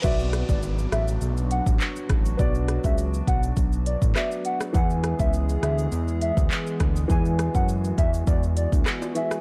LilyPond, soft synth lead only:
\new Staff \with { instrumentName = "Soft synth lead" } { \time 4/4 \key b \dorian \tempo 4 = 102 e''16 r8 d''16 r8 e''16 r8. fis''16 r4 r16 | d''16 r8 e''16 r8 fis''16 r8. d''16 r16 e''16 r16 fis''16 r16 | fis''16 r8 e''16 r8 e''16 r8. e''16 r4 r16 | gis''16 r8 fis''16 r8 e''16 r16 d''16 r16 d''16 r8. e''16 r16 | }